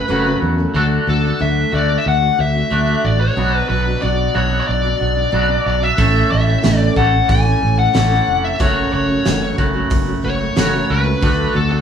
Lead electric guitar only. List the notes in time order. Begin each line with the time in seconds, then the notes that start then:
Already playing: B4
0.76 A4
1.09 A4
1.41 E5
1.75 D5
1.98 E5
2.08 F#5
2.41 E5
3.05 D5
3.21 C#5
3.69 B4
4.02 D5
4.36 C#5
4.61 C#5
4.68 D5
5.66 D5
5.83 E5
6.32 E5
6.78 D5
6.97 F#5
7.30 G#5
7.79 F#5
8.44 E5
8.61 C#5
8.93 C#5
10.25 C#5
10.90 B4
11.56 A4
11.72 A4